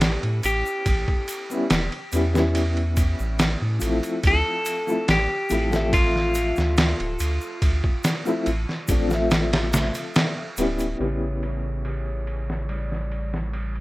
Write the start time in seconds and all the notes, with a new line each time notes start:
Already playing: A1 G3 B3 C#4 E4 G4
0.01 snare, ride, shaker
0.23 A2, ride
0.43 A1 G4, ride, shaker
0.66 shaker
0.86 A1, kick, ride, shaker
1.08 kick
1.28 ride, shaker
1.50 G3 B3 C#4 E4, shaker
1.70 E1, snare, ride, shaker
1.92 ride
2.11 E2 G3 B3 C#4 E4, ride, shaker
2.33 G3 B3 C#4, snare, shaker
2.38 E4
2.55 ride, shaker
2.77 ride
2.97 kick, ride, shaker
3.19 A1, shaker
3.39 snare, ride, shaker
3.61 A2
3.79 A1 F3 A3 C4, ride, shaker
3.85 E4
4.03 ride, shaker
4.23 D2 A4, kick, ride, shaker
4.65 ride, shaker
4.87 F3 A3 C4 E4, shaker
5.08 A1 G4, snare, ride, shaker
5.50 A1 F3 A3 C4 E4, ride, shaker
5.70 F3 A3 C4, snare, shaker
5.76 E5
5.93 F4, kick, ride, shaker
6.16 snare
6.34 ride, shaker
6.56 D2, snare, shaker
6.77 snare, ride, shaker
7.00 D1, ride
7.19 D2, ride, shaker
7.41 shaker
7.62 D2, kick, ride, shaker
7.84 kick
8.04 snare, ride, shaker
8.26 F3 A3 C4 E4, shaker
8.46 A1, ride, shaker
8.69 snare
8.88 A1 F3 A3 C4 D4, kick, ride, shaker
9.08 F3 A3 C4, snare, shaker
9.14 E5
9.31 snare, ride, shaker
9.53 snare, ride
9.73 snare, ride, shaker
9.94 ride, shaker
10.14 snare, ride, shaker
10.57 D1 G3 B3 C#4 E4, ride, shaker
10.79 ride, shaker
10.98 A1 C#3 G3 B3 C#4, ride
11.04 E4
11.42 A3, ride
11.84 C#3, ride
12.27 ride
12.50 snare
12.68 G3, ride
12.92 snare
13.12 ride
13.34 snare
13.53 ride
13.75 ride